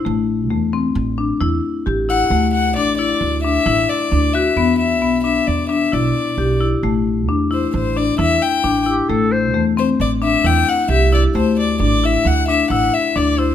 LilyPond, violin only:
\new Staff \with { instrumentName = "Violin" } { \time 5/4 \key a \dorian \tempo 4 = 133 r1 r8 fis''8~ | fis''8 fis''8 d''8 d''4 e''4 d''4 e''8~ | e''8 e''4 e''8 d''8 e''8 d''4. r8 | r4. c''8 c''8 d''8 e''8 g''4 r8 |
r4. c''8 d''8 e''8 g''8 fis''8 e''8 d''8 | c''8 d''8 d''8 e''8 fis''8 e''8 fis''8 e''8 d''8 c''8 | }